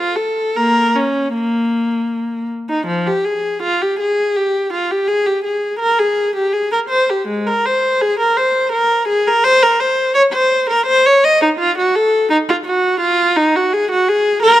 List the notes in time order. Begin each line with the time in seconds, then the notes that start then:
0.00 F4
0.16 A4
0.56 A#3 A#4
0.95 C#4
1.34 A#3
2.69 D#4
2.87 F3
3.07 G4
3.25 G#4
3.63 F4
3.82 G4
4.00 G#4
4.36 G4
4.73 F4
4.91 G4
5.08 G#4
5.26 G4
5.44 G#4
5.80 A#4
5.99 G#4
6.36 G4
6.53 G#4
6.72 A#4
6.90 C5
7.10 G4
7.28 G#3
7.47 A#4
7.66 C5
8.01 G#4
8.20 A#4
8.37 C5
8.72 A#4
9.08 G#4
9.27 A#4
9.44 C5
9.63 A#4
9.80 C5
10.15 C#5
10.33 C5
10.70 A#4
10.86 C5
11.06 C#5
11.24 D#5
11.42 D#4
11.59 F4
11.78 F#4
11.95 A4
12.30 D#4
12.49 F4
12.66 F#4
13.01 F4
13.37 D#4
13.56 F#4
13.73 G#4
13.91 F#4
14.09 G#4
14.43 A#4